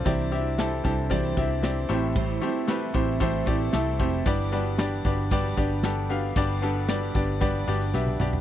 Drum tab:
HH |x-x-x-x-x-x-x-x-|x-x-x-x-x-x-x-x-|x-x-x-x-x-x-x-x-|x-x-x-x-x-x-----|
CP |----x-------x---|----x-------x---|----x-------x---|----x-----------|
SD |----o-------o---|----o-------o---|----o-------o---|----o------oo---|
T1 |----------------|----------------|----------------|-------------o--|
T2 |----------------|----------------|----------------|--------------o-|
FT |----------------|----------------|----------------|---------------o|
BD |o-----o-o-o-----|o-----o-o-o---o-|o-----o-o-o-----|o-----o-o-------|